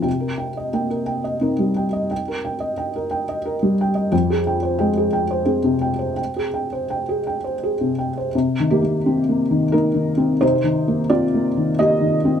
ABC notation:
X:1
M:3/4
L:1/16
Q:1/4=88
K:Cm
V:1 name="Felt piano"
g B g e g B g e B G, g e | g B g e g B g e B G, g e | g A g c g A g c A C, g c | g A g c g A g c A C, g c |
z2 [B,G]6 [EB]4 | [Ec]4 [Fd]4 [Ge]4 |]
V:2 name="Felt piano"
C,4 B,4 [CE]4- | [CE]12 | F,,4 A,4 C4- | C12 |
(3C,2 E,2 B,2 (3C2 B,2 E,2 (3B,2 E,2 C2 | (3C,2 E,2 B,2 (3C2 B,2 E,2 (3B,2 E,2 C2 |]